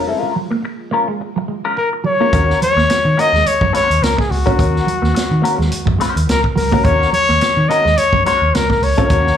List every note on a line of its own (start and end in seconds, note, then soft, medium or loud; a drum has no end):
0.00 2.29 F3 medium
0.00 2.28 G#3 medium
0.00 2.28 A#3 loud
0.07 0.18 G3 loud
0.07 0.19 C4 medium
0.07 0.19 E4 loud
0.07 0.20 A4 loud
0.18 0.33 G#3 loud
0.18 0.34 C#4 medium
0.18 0.34 F4 loud
0.18 0.34 A#4 loud
0.22 muted clean electric guitar stroke soft
0.36 0.46 F#3 medium
0.51 0.59 A#3 medium
0.51 muted clean electric guitar stroke medium
0.65 muted clean electric guitar stroke soft
0.91 1.08 G#3 medium
0.91 1.01 A#3 medium
0.91 1.08 C#4 medium
0.91 1.08 F4 medium
0.91 1.08 A#4 medium
1.08 1.16 G#3 medium
1.08 muted clean electric guitar stroke soft
1.21 muted clean electric guitar stroke soft
1.36 1.44 F#3 medium
1.36 muted clean electric guitar stroke soft
1.48 1.58 G#3 medium
1.65 1.76 G#3 medium
1.65 1.76 C#4 medium
1.65 1.77 F4 medium
1.65 1.77 A#4 medium
1.77 1.90 A#4 medium
1.77 muted clean electric guitar stroke soft
1.93 muted clean electric guitar stroke soft
2.04 2.14 F#3 medium
2.04 2.58 C#5 loud
2.20 2.33 G#3 medium
2.20 2.28 A#3 medium
2.20 2.33 C#4 medium
2.20 2.34 F4 medium
2.20 2.33 A#4 medium
2.33 2.54 D#2 medium
2.33 2.59 A#3 medium
2.33 2.60 C#4 loud
2.33 2.60 F#4 loud
2.33 2.60 A#4 loud
2.33 kick loud
2.33 closed hi-hat medium
2.50 muted clean electric guitar stroke soft
2.50 snare soft
2.62 2.72 F#3 medium
2.62 3.21 C#5 loud
2.62 closed hi-hat medium
2.76 2.86 D#2 medium
2.76 2.85 A#3 medium
2.76 muted clean electric guitar stroke medium
2.76 snare soft
2.89 muted clean electric guitar stroke soft
2.89 muted picked electric bass stroke medium
2.89 snare loud
2.89 closed hi-hat loud
3.05 3.14 D#3 loud
3.17 3.33 A#3 medium
3.17 3.29 A#3 medium
3.17 3.33 C#4 medium
3.17 3.33 F#4 medium
3.17 3.32 A#4 medium
3.17 3.49 D#5 loud
3.17 closed hi-hat medium
3.33 3.42 D#2 loud
3.33 3.43 G#3 medium
3.33 muted clean electric guitar stroke soft
3.33 snare soft
3.46 3.75 C#5 loud
3.46 muted picked electric bass stroke soft
3.46 muted clean electric guitar stroke soft
3.46 closed hi-hat medium
3.61 3.71 F#2 medium
3.61 3.70 F#3 medium
3.61 muted clean electric guitar stroke soft
3.61 kick medium
3.73 3.85 G#3 medium
3.73 3.95 A#3 medium
3.73 3.89 C#4 medium
3.73 3.88 F#4 medium
3.73 3.89 C5 medium
3.73 4.05 C#5 loud
3.73 snare soft
3.73 closed hi-hat medium
3.89 3.99 D#2 medium
3.89 muted clean electric guitar stroke soft
3.89 closed hi-hat medium
4.01 4.14 C#2 loud
4.01 4.19 A#4 loud
4.01 muted clean electric guitar stroke soft
4.01 snare loud
4.01 closed hi-hat medium
4.17 4.26 A#3 medium
4.17 4.32 G#4 medium
4.17 muted clean electric guitar stroke soft
4.17 kick medium
4.17 snare soft
4.31 4.43 C#2 medium
4.31 6.00 F#4 medium
4.31 muted clean electric guitar stroke soft
4.31 open hi-hat medium
4.46 4.57 A#3 medium
4.46 4.57 C#4 medium
4.46 4.54 C#4 medium
4.46 4.58 F#4 medium
4.46 4.58 A#4 medium
4.46 kick loud
4.58 4.80 D#2 loud
4.58 4.85 A#3 medium
4.58 4.85 C#4 medium
4.58 4.85 F#4 loud
4.58 4.85 A#4 medium
4.58 kick loud
4.58 closed hi-hat medium
4.74 muted clean electric guitar stroke soft
4.74 snare soft
4.87 4.97 F#3 medium
4.87 closed hi-hat medium
5.02 5.12 D#2 medium
5.02 5.10 A#3 medium
5.02 muted clean electric guitar stroke soft
5.02 snare soft
5.14 muted clean electric guitar stroke soft
5.14 muted picked electric bass stroke soft
5.14 snare loud
5.14 closed hi-hat loud
5.31 5.40 D#3 loud
5.42 5.53 A#3 medium
5.42 5.59 A#3 medium
5.42 5.59 C#4 medium
5.42 5.58 F#4 medium
5.42 5.58 A#4 medium
5.42 closed hi-hat medium
5.58 5.69 D#2 loud
5.58 5.67 G#3 medium
5.58 muted clean electric guitar stroke medium
5.58 snare soft
5.71 muted clean electric guitar stroke soft
5.71 muted picked electric bass stroke soft
5.71 closed hi-hat medium
5.86 5.96 F#2 medium
5.86 5.94 F#3 medium
5.86 muted clean electric guitar stroke soft
5.86 kick loud
5.98 6.09 G#3 medium
5.98 6.21 A#3 medium
5.98 6.16 C#4 medium
5.98 6.16 F#4 loud
5.98 6.16 C5 loud
5.98 snare soft
5.98 closed hi-hat medium
6.16 6.25 D#2 medium
6.16 muted clean electric guitar stroke medium
6.16 closed hi-hat medium
6.28 6.41 C#2 loud
6.28 6.41 A#4 loud
6.28 muted clean electric guitar stroke soft
6.28 snare loud
6.28 closed hi-hat medium
6.44 muted clean electric guitar stroke soft
6.44 kick medium
6.56 6.68 C#2 medium
6.56 6.66 F#3 medium
6.56 6.86 A#4 medium
6.56 snare soft
6.56 open hi-hat medium
6.71 6.80 A#3 medium
6.71 6.84 A#3 medium
6.71 6.84 C#4 medium
6.71 6.84 F#4 medium
6.71 6.86 A#4 medium
6.71 kick loud
6.84 7.06 D#2 loud
6.84 7.11 A#3 medium
6.84 7.11 C#4 loud
6.84 7.12 F#4 loud
6.84 7.12 A#4 loud
6.84 7.12 C#5 loud
6.84 kick loud
6.84 closed hi-hat medium
6.99 muted clean electric guitar stroke soft
6.99 snare soft
7.13 7.23 F#3 medium
7.13 7.70 C#5 loud
7.13 closed hi-hat medium
7.29 7.38 D#2 medium
7.29 7.37 A#3 medium
7.29 muted clean electric guitar stroke soft
7.29 snare soft
7.41 muted clean electric guitar stroke soft
7.41 snare loud
7.41 closed hi-hat loud
7.57 7.66 D#3 loud
7.69 7.79 A#3 medium
7.69 7.86 A#3 medium
7.69 7.86 C#4 medium
7.69 7.86 F#4 medium
7.69 7.85 A#4 medium
7.69 7.99 D#5 loud
7.69 closed hi-hat medium
7.85 7.95 D#2 loud
7.85 7.93 G#3 medium
7.85 muted clean electric guitar stroke soft
7.85 snare soft
7.97 8.25 C#5 loud
7.97 muted clean electric guitar stroke medium
7.97 muted picked electric bass stroke soft
7.97 closed hi-hat loud
8.13 8.22 F#2 loud
8.13 8.21 F#3 medium
8.13 muted clean electric guitar stroke soft
8.13 kick medium
8.25 8.36 G#3 medium
8.25 8.46 A#3 medium
8.25 8.42 C#4 medium
8.25 8.41 F#4 loud
8.25 8.41 C5 medium
8.25 8.56 C#5 loud
8.25 snare soft
8.25 closed hi-hat medium
8.42 8.51 D#2 medium
8.42 muted clean electric guitar stroke medium
8.55 8.66 C#2 medium
8.55 8.70 A#4 loud
8.55 muted clean electric guitar stroke soft
8.55 snare loud
8.55 closed hi-hat medium
8.70 8.78 A#3 medium
8.70 8.85 A#4 medium
8.70 muted clean electric guitar stroke soft
8.70 kick medium
8.70 snare soft
8.82 8.94 C#2 loud
8.82 9.37 C#5 loud
8.82 muted clean electric guitar stroke soft
8.82 open hi-hat medium
8.98 9.09 A#3 medium
8.98 9.06 C#4 medium
8.98 9.10 C#4 medium
8.98 9.11 F#4 medium
8.98 9.11 A#4 medium
8.98 kick loud
8.98 closed hi-hat soft
9.10 9.31 D#2 loud
9.10 9.37 A#3 medium
9.10 9.37 C#4 loud
9.10 9.37 F#4 loud
9.10 9.37 A#4 loud
9.10 kick loud
9.10 closed hi-hat medium
9.26 muted clean electric guitar stroke medium
9.26 snare soft